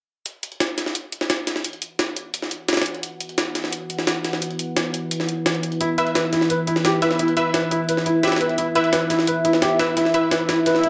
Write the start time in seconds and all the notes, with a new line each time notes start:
0.26 E4 B4 F#5, closed hi-hat
0.43 closed hi-hat
0.52 closed hi-hat
0.60 snare, closed hi-hat
0.78 snare, closed hi-hat
0.86 snare
0.95 closed hi-hat
1.12 closed hi-hat
1.21 snare
1.30 snare, closed hi-hat
1.47 snare, closed hi-hat
1.56 snare
1.64 closed hi-hat
1.73 closed hi-hat
1.82 closed hi-hat
1.99 snare, closed hi-hat
2.16 closed hi-hat
2.34 closed hi-hat
2.42 snare
2.51 closed hi-hat
2.68 snare, closed hi-hat
2.73 snare, closed hi-hat
2.77 snare, closed hi-hat
2.82 snare, closed hi-hat
2.86 closed hi-hat
2.95 closed hi-hat
3.03 closed hi-hat
3.20 closed hi-hat
3.29 closed hi-hat
3.38 snare, closed hi-hat
3.55 snare, closed hi-hat
3.64 snare
3.73 closed hi-hat
3.90 closed hi-hat
3.99 snare
4.07 snare, closed hi-hat
4.25 snare, closed hi-hat
4.33 snare
4.42 closed hi-hat
4.51 closed hi-hat
4.59 closed hi-hat
4.77 snare, closed hi-hat
4.94 closed hi-hat
5.11 closed hi-hat
5.20 snare
5.29 closed hi-hat
5.46 snare, closed hi-hat
5.55 closed hi-hat
5.63 closed hi-hat
5.72 closed hi-hat
5.81 E4 E5, closed hi-hat
5.98 E4 B4 E5, closed hi-hat
6.07 closed hi-hat
6.15 B4, snare, closed hi-hat
6.33 E4, snare, closed hi-hat
6.41 snare
6.50 B4, closed hi-hat
6.67 E4, closed hi-hat
6.76 snare
6.85 G4, snare, closed hi-hat
7.02 E4 B4 E5, snare, closed hi-hat
7.11 snare
7.19 E4, closed hi-hat
7.28 closed hi-hat
7.37 E4 B4 E5, closed hi-hat
7.54 B4, snare, closed hi-hat
7.71 E4, closed hi-hat
7.89 B4, closed hi-hat
7.97 snare
8.06 E4, closed hi-hat
8.23 E4 G4 B4 E5, snare, closed hi-hat
8.28 snare, closed hi-hat
8.32 snare, closed hi-hat
8.36 snare, closed hi-hat
8.41 B4, closed hi-hat
8.49 closed hi-hat
8.58 E4, closed hi-hat
8.75 E4 B4 E5, closed hi-hat
8.84 closed hi-hat
8.93 B4, snare, closed hi-hat
9.10 E4, snare, closed hi-hat
9.19 snare
9.27 B4, closed hi-hat
9.45 E4, closed hi-hat
9.53 snare
9.62 G4, snare, closed hi-hat
9.79 E4 B4 E5, snare, closed hi-hat
9.97 E4, snare, closed hi-hat
10.05 snare
10.14 E4 B4 E5, closed hi-hat
10.31 B4, snare, closed hi-hat
10.49 E4, snare, closed hi-hat
10.66 B4, snare, closed hi-hat, swell
10.75 snare
10.83 E4, closed hi-hat